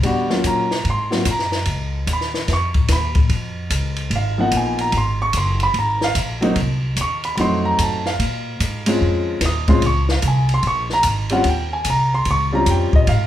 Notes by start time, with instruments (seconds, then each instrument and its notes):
0.03 upright bass D#2, grand piano G3 B3 D4 F#4, kick, ride
0.30 grand piano F#3 A#3 C#4 F4, snare
0.44 upright bass A#2, grand piano A#5, kick, hi-hat pedal, ride
0.71 snare
0.85 upright bass G#2, kick, ride
0.90 grand piano C6
1.11 grand piano F#3 A#3 C4 F4, snare
1.25 upright bass F#2, kick, hi-hat pedal, ride
1.31 grand piano A#5
1.39 snare
1.52 snare
1.65 upright bass C#2, kick, ride
2.07 upright bass D#2, kick, hi-hat pedal, ride
2.13 grand piano B5
2.21 snare
2.34 snare
2.48 upright bass F2, kick, snare, ride
2.53 grand piano C#6
2.74 kick, ride
2.88 upright bass D#2, kick, snare, hi-hat pedal, ride
2.92 grand piano B5
3.15 kick, ride
3.29 upright bass F2, kick, ride
3.70 upright bass C#2, kick, hi-hat pedal, ride
3.96 ride
4.10 upright bass G#1, kick, ride
4.16 grand piano F5
4.38 grand piano F3 A#3 B3 D#4 F#5
4.51 upright bass A#1, kick, hi-hat pedal, ride
4.57 grand piano G#5
4.78 grand piano A#5, ride
4.92 upright bass G#1, kick, ride
4.97 grand piano C6
5.22 grand piano C#6
5.33 upright bass F#1, kick, hi-hat pedal, ride
5.37 grand piano C6
5.60 grand piano B5, ride
5.74 upright bass G#1, kick, ride
5.79 grand piano A#5
6.01 grand piano F5, snare
6.15 upright bass A#1, kick, hi-hat pedal, ride
6.41 grand piano F#3 A#3 C4 D#4, ride
6.56 upright bass C2, kick, ride
6.96 upright bass D#2, kick, hi-hat pedal, ride
7.01 grand piano C#6
7.24 grand piano B5, ride
7.35 upright bass F2, grand piano F#3 A3 C4 B5, kick, ride
7.40 grand piano D#4 C6
7.65 grand piano A#5
7.79 upright bass F#2, grand piano A5, kick, hi-hat pedal, ride
8.06 grand piano F5, snare
8.19 upright bass A#2, kick, ride
8.60 upright bass G#2, kick, hi-hat pedal, ride
8.86 grand piano G#3 C4 C#4 F4, ride
9.01 upright bass F2, kick
9.41 upright bass D#2, kick, snare, hi-hat pedal, ride
9.45 grand piano D#6
9.68 grand piano G#3 C4 C#4 F4 C6, kick, ride
9.81 upright bass C#2, kick, ride
9.86 grand piano C#6
10.09 grand piano F5, snare
10.22 upright bass C2, kick, hi-hat pedal, ride
10.28 grand piano G#5
10.49 ride
10.54 grand piano C6
10.63 upright bass A#1, kick, ride
10.67 grand piano C#6
10.90 grand piano A#5, snare
11.03 upright bass G#1, kick, hi-hat pedal, ride
11.29 grand piano G3 C4 C#4 F4 F#5, ride
11.44 upright bass D#2, kick, ride
11.49 grand piano G5
11.73 grand piano G#5
11.85 upright bass C2, kick, hi-hat pedal, ride
11.90 grand piano A#5
12.14 grand piano C6
12.25 upright bass C#2, kick, ride
12.31 grand piano C#6
12.52 grand piano G3 C4 C#4 F4 A#5
12.66 upright bass F2, kick, hi-hat pedal, ride
12.71 grand piano G5
12.93 grand piano D#5, muted upright bass stroke, kick
13.07 upright bass G#2, grand piano F5, kick, ride